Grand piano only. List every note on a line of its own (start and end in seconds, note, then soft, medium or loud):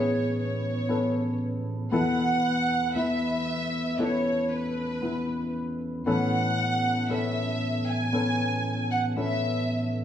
0.00 1.89 A2 soft
0.00 1.89 E3 soft
0.00 0.89 B3 medium
0.00 0.89 C#4 medium
0.00 0.85 G#4 medium
0.00 0.90 A4 medium
0.89 1.87 B3 medium
0.89 1.88 C#4 medium
0.89 1.88 A4 medium
1.92 6.02 E2 medium
1.92 6.02 B2 soft
1.92 2.90 B3 medium
1.92 2.91 E4 medium
1.92 2.91 A4 medium
2.95 3.94 B3 medium
2.95 3.94 E4 medium
2.95 3.95 B4 medium
3.98 4.97 B3 medium
3.98 4.98 E4 medium
3.98 4.98 A4 medium
5.02 6.01 B3 medium
5.02 6.01 E4 medium
5.02 6.02 B4 medium
6.06 10.04 A2 medium
6.06 10.04 E3 medium
6.06 7.05 B3 medium
6.06 7.05 C#4 medium
6.06 7.05 A4 medium
7.09 8.08 B3 medium
7.09 8.08 C#4 medium
7.09 8.09 A4 medium
8.12 9.11 B3 medium
8.12 9.12 C#4 medium
8.12 9.12 A4 medium
9.16 10.04 B3 medium
9.16 10.04 C#4 medium
9.16 10.04 A4 medium